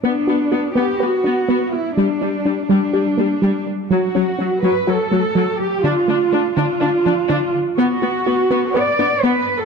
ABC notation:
X:1
M:4/4
L:1/16
Q:1/4=124
K:Bm
V:1 name="Cello section"
D6 G2 F6 E2 | D6 D8 z2 | F6 B2 A6 G2 | =F6 F8 z2 |
F8 d4 B3 A |]
V:2 name="Synth arpeggio sound"
B,2 F2 F2 B,2 B2 D2 B,2 z2 | G,2 D2 D2 G,2 G2 _B,2 G,2 z2 | F,2 C2 C2 F,2 F2 A,2 F,2 z2 | D,2 A,2 A,2 D,2 D2 =F,2 D,2 z2 |
B,2 F2 F2 B,2 B2 D2 B,2 z2 |]
V:3 name="Viola section"
B,2 B,2 B,2 B,2 B,2 B,2 B,2 z2 | G,2 G,2 G,2 G,2 G,2 G,2 G,2 z2 | F,2 F,2 F,2 F,2 F,2 F,2 F,2 z2 | D2 D2 D2 D2 D2 D2 D2 z2 |
B,2 B,2 B,2 B,2 B,2 B,2 B,2 z2 |]